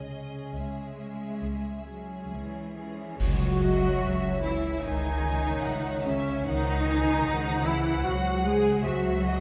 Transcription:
0.00 0.42 C#2 medium
0.00 0.41 C#3 soft
0.00 3.19 C#3 soft
0.00 0.53 D#5 medium
0.10 0.97 G#3 soft
0.10 0.97 C#4 soft
0.10 0.96 G#4 soft
0.10 0.97 G#4 soft
0.54 1.30 C#2 soft
0.54 1.83 G#3 soft
0.54 2.30 C#4 soft
0.54 2.76 E5 soft
0.97 1.86 G#3 soft
0.97 1.86 C#4 soft
0.97 1.85 G#4 soft
0.97 1.86 G#4 soft
1.42 2.18 C#2 soft
1.42 4.83 G#3 soft
1.86 2.31 F#3 soft
1.86 2.74 G#3 soft
1.86 2.74 C#4 soft
1.86 2.73 G#4 soft
1.86 2.75 G#4 soft
2.31 3.07 C#2 soft
2.31 3.20 E3 medium
2.31 3.40 C#4 soft
2.76 3.19 G#3 soft
2.76 3.19 C#4 soft
2.76 3.19 G#4 soft
2.76 3.61 G#4 soft
3.19 3.94 C#2 medium
3.19 6.45 C#3 medium
3.19 4.40 F#3 medium
3.19 4.40 F#4 loud
3.19 3.59 C#5 medium
3.19 concert bass drum medium
3.19 crash medium
3.42 5.03 C#4 medium
3.61 5.24 G#4 medium
3.61 4.03 D#5 medium
3.61 4.42 E5 medium
3.84 4.23 C#5 medium
4.03 4.74 C#2 medium
4.03 4.82 E5 medium
4.03 4.43 G#5 medium
4.24 4.63 C#5 medium
4.43 4.83 E3 medium
4.43 4.84 E4 medium
4.43 5.22 E5 medium
4.43 5.64 G#5 medium
4.64 5.44 C#5 medium
4.83 5.55 C#2 medium
4.83 6.05 D#3 medium
4.83 8.75 G#3 soft
4.83 6.06 D#4 loud
4.83 5.65 G#5 medium
5.24 9.15 G#4 medium
5.24 6.04 E5 medium
5.45 5.84 C#5 medium
5.64 6.36 C#2 medium
5.64 6.05 F#5 medium
5.64 6.05 G#5 medium
5.85 6.25 C#5 medium
6.04 6.46 C#3 medium
6.04 6.46 C#4 medium
6.04 6.45 E5 medium
6.04 7.45 G#5 medium
6.26 6.49 C#5 medium
6.45 7.16 C#2 medium
6.45 8.05 C#3 medium
6.45 7.64 D#3 medium
6.45 7.64 D#4 loud
6.45 6.85 C5 medium
6.45 6.86 F#5 medium
6.66 8.25 C4 medium
6.85 8.45 F#4 medium
6.85 7.65 C5 medium
6.85 7.26 G#5 medium
7.25 7.96 C#2 medium
7.25 8.85 F#5 loud
7.25 7.65 F#5 medium
7.46 9.05 G#5 medium
7.66 8.06 E3 medium
7.66 8.06 E4 loud
7.66 8.44 C5 medium
7.66 8.85 F#5 medium
7.87 8.65 C5 medium
8.06 8.76 C#2 medium
8.06 9.40 C#3 medium
8.06 8.45 F#3 medium
8.06 8.46 F#4 loud
8.26 9.40 C4 medium
8.46 8.86 G#3 medium
8.46 9.40 F#4 medium
8.46 8.85 G#4 loud
8.46 9.26 C5 medium
8.66 9.40 C5 medium
8.84 9.40 C#2 medium
8.84 9.40 F#3 medium
8.84 9.40 F#4 loud
8.84 9.26 E5 medium
8.84 9.27 F#5 medium
9.07 9.40 G#5 medium
9.27 9.40 C5 medium
9.27 9.40 D#5 medium
9.27 9.40 F#5 medium

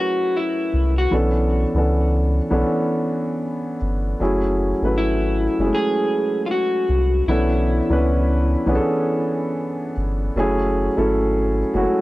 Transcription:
0.00 1.14 F#3 medium
0.00 1.14 A3 medium
0.00 1.12 C#4 medium
0.00 1.14 E4 medium
0.00 0.37 F#4 medium
0.00 1.13 A#4 medium
0.00 1.13 B4 medium
0.00 1.14 G#5 loud
0.36 0.94 E4 medium
0.73 1.07 C2 loud
0.98 1.13 F#4 medium
1.11 1.66 B1 loud
1.11 1.61 E3 medium
1.11 1.62 B3 medium
1.11 1.62 C#4 medium
1.11 1.62 D4 medium
1.11 1.62 A4 medium
1.74 2.40 C#2 medium
1.74 2.35 E3 medium
1.74 2.36 B3 medium
1.74 2.36 C#4 medium
1.74 2.36 D4 medium
1.78 2.37 A4 medium
2.51 2.64 B1 medium
2.51 3.75 E3 medium
2.51 3.76 B3 medium
2.51 3.76 C#4 medium
2.51 3.77 D4 medium
2.51 3.77 A4 medium
3.81 4.15 G1 medium
4.20 4.73 F#1 loud
4.20 4.69 F#3 medium
4.20 4.70 A3 medium
4.20 4.70 C#4 medium
4.20 4.71 E4 medium
4.20 4.71 G#4 medium
4.82 5.48 G#1 medium
4.82 5.43 F#3 medium
4.82 5.43 A3 medium
4.82 5.43 C#4 medium
4.82 5.44 E4 medium
4.82 5.44 B4 medium
4.98 5.76 E4 medium
5.59 5.72 F#1 medium
5.59 6.83 F#3 medium
5.59 5.64 G#3 soft
5.59 6.84 C#4 medium
5.59 6.84 E4 medium
5.59 6.85 G#4 medium
5.66 6.87 A3 medium
5.75 6.46 G#4 loud
6.46 6.51 F4 medium
6.51 7.24 F#4 medium
6.89 7.22 C2 medium
7.27 7.81 B1 loud
7.27 7.78 E3 medium
7.27 7.78 B3 medium
7.27 7.78 C#4 medium
7.27 7.79 D4 medium
7.27 9.93 E4 medium
7.27 7.79 A4 medium
7.89 8.56 C#2 medium
7.89 8.50 E3 medium
7.89 8.51 B3 medium
7.89 8.51 C#4 medium
7.89 8.51 D4 medium
7.89 8.52 B4 medium
8.66 8.79 B1 medium
8.66 9.91 E3 medium
8.66 9.91 B3 medium
8.66 9.92 C#4 medium
8.66 9.92 D4 medium
8.66 8.73 G#4 medium
8.75 9.95 A4 medium
9.97 10.30 G1 medium
10.35 10.89 F#1 loud
10.35 10.85 F#3 medium
10.35 10.86 A3 medium
10.35 10.86 C#4 medium
10.35 10.86 E4 medium
10.35 10.87 G#4 loud
10.96 11.64 G#1 medium
10.96 11.57 F#3 medium
10.96 11.58 A3 medium
10.96 11.58 C#4 medium
10.96 11.58 E4 medium
10.96 11.59 A4 medium
11.74 11.87 F#1 medium
11.74 12.01 F#3 medium
11.74 11.79 G#3 medium
11.74 12.01 C#4 medium
11.74 12.01 E4 medium
11.74 12.01 F#4 medium
11.81 12.01 A3 medium

